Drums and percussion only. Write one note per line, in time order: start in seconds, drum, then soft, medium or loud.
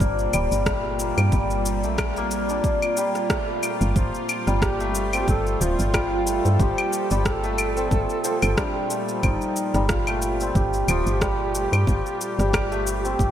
0.00 kick loud
0.00 shaker soft
0.19 shaker soft
0.33 claves medium
0.33 shaker medium
0.52 shaker soft
0.66 kick loud
0.66 cross-stick loud
0.66 shaker soft
0.99 shaker medium
1.18 claves medium
1.18 shaker soft
1.32 kick loud
1.32 shaker soft
1.50 shaker soft
1.66 shaker medium
1.84 shaker soft
1.98 kick loud
1.98 cross-stick loud
1.98 claves medium
1.98 shaker soft
2.17 shaker soft
2.31 shaker medium
2.49 shaker soft
2.64 kick loud
2.64 shaker soft
2.82 claves medium
2.82 shaker soft
2.97 shaker medium
3.15 cross-stick soft
3.15 shaker soft
3.30 kick loud
3.30 cross-stick loud
3.30 shaker soft
3.63 claves medium
3.63 shaker medium
3.81 shaker soft
3.96 kick loud
3.96 shaker soft
4.14 shaker soft
4.29 claves medium
4.29 shaker medium
4.47 cross-stick soft
4.47 shaker soft
4.62 kick loud
4.62 cross-stick loud
4.62 shaker soft
4.80 shaker soft
4.95 shaker medium
5.13 claves medium
5.13 shaker soft
5.28 kick loud
5.28 shaker soft
5.47 shaker soft
5.61 shaker medium
5.79 shaker soft
5.94 kick loud
5.94 cross-stick loud
5.94 claves medium
5.94 shaker soft
6.27 shaker medium
6.45 shaker soft
6.60 kick loud
6.60 shaker soft
6.78 claves medium
6.78 shaker soft
6.93 shaker medium
7.11 shaker soft
7.25 kick loud
7.25 cross-stick loud
7.25 shaker soft
7.44 shaker soft
7.58 claves medium
7.58 shaker medium
7.77 shaker soft
7.91 kick loud
7.91 shaker soft
8.10 shaker soft
8.24 shaker medium
8.42 cross-stick soft
8.42 claves medium
8.42 shaker soft
8.57 kick loud
8.57 cross-stick loud
8.57 shaker soft
8.90 shaker medium
9.09 shaker soft
9.23 kick loud
9.23 claves medium
9.23 shaker soft
9.42 shaker soft
9.56 shaker medium
9.74 cross-stick soft
9.74 shaker soft
9.89 kick loud
9.89 cross-stick loud
9.89 shaker soft
10.07 claves medium
10.07 shaker soft
10.22 shaker medium
10.40 shaker soft
10.55 kick loud
10.55 shaker soft
10.73 shaker soft
10.88 claves medium
10.88 shaker medium
11.07 shaker soft
11.21 kick loud
11.21 cross-stick loud
11.21 shaker soft
11.55 shaker medium
11.73 claves medium
11.73 shaker soft
11.87 kick loud
11.87 shaker soft
12.06 shaker soft
12.21 shaker medium
12.39 cross-stick soft
12.39 shaker soft
12.53 kick loud
12.53 cross-stick loud
12.53 claves medium
12.53 shaker soft
12.72 shaker soft
12.87 shaker medium
13.05 shaker soft
13.19 kick loud
13.19 shaker soft